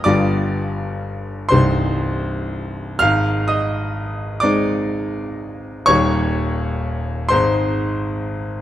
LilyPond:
<<
  \new Staff \with { instrumentName = "Grand piano" } { \time 6/8 \key aes \lydian \tempo 4. = 42 <d'' d'''>4. <c'' c'''>4. | <f'' f'''>8 <ees'' ees'''>4 <d'' d'''>4. | <des'' des'''>4. <c'' c'''>4. | }
  \new Staff \with { instrumentName = "Grand piano" } { \clef bass \time 6/8 \key aes \lydian <g,, g, g b f'>4. <c,, c, g c' ees'>4. | <aes,, aes,>4. <aes c' ees'>4. | <ees,, ees, g bes ees'>4. <aes,, aes, aes c' ees'>4. | }
>>